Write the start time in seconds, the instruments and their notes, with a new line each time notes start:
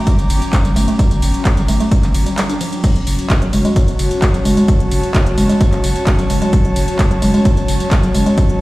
Already playing: synth drone F#3 C#4, analog synth pad G5 A#5 D6
0.07 synth arpeggio sound G3, kick, closed hi-hat, tambourine
0.19 sub bass G1, closed hi-hat, tambourine
0.30 sub bass G1, open hi-hat, ride, tambourine
0.42 closed hi-hat, tambourine
0.53 kick, clap, closed hi-hat, tambourine
0.65 sub bass G1, synth arpeggio sound G3, closed hi-hat, tambourine
0.76 sub bass G1, synth arpeggio sound A3, open hi-hat, ride, tambourine
0.88 synth arpeggio sound A3, closed hi-hat, tambourine
0.99 synth arpeggio sound G3, kick, closed hi-hat, tambourine
1.11 sub bass G1, closed hi-hat, tambourine
1.22 sub bass G1, open hi-hat, ride, tambourine
1.34 closed hi-hat, tambourine
1.45 kick, clap, closed hi-hat, tambourine
1.57 sub bass G1, synth arpeggio sound G3, closed hi-hat, tambourine
1.68 sub bass G1, synth arpeggio sound A3, open hi-hat, ride, tambourine
1.80 synth arpeggio sound A3, closed hi-hat, tambourine
1.91 synth arpeggio sound G3, kick, closed hi-hat, tambourine
2.03 sub bass G1, clap, closed hi-hat, tambourine
2.14 sub bass G1, open hi-hat, ride, tambourine
2.26 synth arpeggio sound G3, closed hi-hat, tambourine
2.38 synth arpeggio sound G3, clap, closed hi-hat, tambourine
2.49 synth arpeggio sound D4, closed hi-hat, tambourine
2.61 synth arpeggio sound F3, open hi-hat, ride, tambourine
2.73 closed hi-hat, tambourine
2.84 synth drone F#3 C#4, synth arpeggio sound F#3, analog synth pad F#4, kick, closed hi-hat, crash, tambourine
2.96 sub bass F#1, closed hi-hat
3.07 sub bass F#1, analog synth pad C#5, open hi-hat, ride, tambourine
3.19 closed hi-hat, tambourine
3.30 kick, clap, closed hi-hat, tambourine
3.42 sub bass F#1, synth arpeggio sound F#3, closed hi-hat
3.53 sub bass F#1, synth arpeggio sound G#3, open hi-hat, ride, tambourine
3.65 synth arpeggio sound G#3, closed hi-hat, tambourine
3.69 analog synth pad A5
3.76 synth arpeggio sound F#3, kick, closed hi-hat, tambourine
3.88 sub bass F#1, closed hi-hat, tambourine
3.99 sub bass F#1, open hi-hat, ride, tambourine
4.11 closed hi-hat, tambourine
4.22 kick, clap, closed hi-hat, tambourine
4.34 sub bass F#1, synth arpeggio sound F#3, closed hi-hat, tambourine
4.45 sub bass F#1, synth arpeggio sound G#3, open hi-hat, ride, tambourine
4.57 synth arpeggio sound G#3, closed hi-hat, tambourine
4.68 synth arpeggio sound F#3, kick, closed hi-hat, tambourine
4.80 sub bass F#1, closed hi-hat
4.91 sub bass F#1, open hi-hat, ride, tambourine
5.03 closed hi-hat, tambourine
5.14 kick, clap, closed hi-hat, tambourine
5.26 sub bass F#1, synth arpeggio sound F#3, closed hi-hat
5.37 sub bass F#1, synth arpeggio sound G#3, open hi-hat, ride, tambourine
5.49 synth arpeggio sound G#3, closed hi-hat, tambourine
5.61 synth arpeggio sound F#3, kick, closed hi-hat, tambourine
5.72 sub bass F#1, clap, closed hi-hat, tambourine
5.84 sub bass F#1, open hi-hat, ride, tambourine
5.96 closed hi-hat, tambourine
6.07 kick, clap, closed hi-hat, tambourine
6.19 sub bass F#1, synth arpeggio sound F#3, closed hi-hat, tambourine
6.30 sub bass F#1, synth arpeggio sound G#3, open hi-hat, ride, tambourine
6.42 synth arpeggio sound G#3, closed hi-hat, tambourine
6.53 synth arpeggio sound F#3, kick, closed hi-hat, tambourine
6.65 sub bass F#1, closed hi-hat
6.76 sub bass F#1, open hi-hat, ride, tambourine
6.88 closed hi-hat, tambourine
6.99 kick, clap, closed hi-hat, tambourine
7.11 sub bass F#1, synth arpeggio sound F#3, closed hi-hat
7.22 sub bass F#1, synth arpeggio sound G#3, open hi-hat, ride, tambourine
7.34 synth arpeggio sound G#3, closed hi-hat, tambourine
7.45 synth arpeggio sound F#3, kick, closed hi-hat, tambourine
7.57 sub bass F#1, closed hi-hat, tambourine
7.68 sub bass F#1, open hi-hat, ride, tambourine
7.80 closed hi-hat, tambourine
7.91 kick, clap, closed hi-hat, tambourine
8.03 sub bass F#1, synth arpeggio sound F#3, closed hi-hat, tambourine
8.14 sub bass F#1, synth arpeggio sound G#3, open hi-hat, ride, tambourine
8.26 synth arpeggio sound G#3, closed hi-hat, tambourine
8.38 synth arpeggio sound F#3, kick, closed hi-hat, tambourine
8.49 sub bass F#1, closed hi-hat